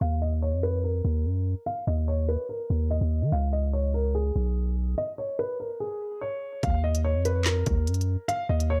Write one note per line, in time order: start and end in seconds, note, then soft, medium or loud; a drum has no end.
0.01 0.54 D#2 loud
0.01 0.18 F5 medium
0.22 0.39 D#5 medium
0.42 0.59 C#5 medium
0.53 1.02 F2 medium
0.63 0.80 B4 medium
0.84 1.63 A#4 medium
1.05 1.27 D#2 loud
1.25 1.55 F#2 loud
1.66 1.83 F5 loud
1.87 2.37 D#2 loud
1.87 2.04 D#5 medium
2.08 2.25 C#5 medium
2.29 2.45 B4 medium
2.49 2.88 A#4 medium
2.70 3.00 D#2 loud
2.91 3.30 D#5 medium
3.01 3.23 D#2 loud
3.22 3.32 D#3 loud
3.32 4.32 C#2 loud
3.32 3.49 F5 medium
3.53 3.70 D#5 medium
3.73 3.90 C#5 medium
3.94 4.11 A#4 medium
4.15 4.94 G#4 medium
4.36 4.95 B1 loud
4.98 5.15 D#5 loud
5.18 5.35 C#5 medium
5.39 5.56 B4 loud
5.60 5.77 A#4 medium
5.80 6.19 G#4 medium
6.21 6.60 C#5 medium
6.63 7.16 D#2 loud
6.63 6.80 F5 loud
6.63 kick loud
6.63 closed hi-hat medium
6.84 7.01 D#5 medium
6.95 closed hi-hat medium
7.05 7.21 C#5 medium
7.15 7.64 F2 loud
7.25 7.42 B4 medium
7.25 closed hi-hat medium
7.45 8.25 A#4 medium
7.45 snare loud
7.45 clap loud
7.45 closed hi-hat medium
7.66 7.89 D#2 loud
7.66 kick medium
7.66 closed hi-hat medium
7.87 8.17 F#2 loud
7.87 closed hi-hat medium
7.94 closed hi-hat medium
8.01 closed hi-hat medium
8.28 8.45 F5 loud
8.28 closed hi-hat medium
8.49 8.80 D#2 loud
8.49 8.66 D#5 medium
8.60 closed hi-hat medium
8.70 8.80 C#5 medium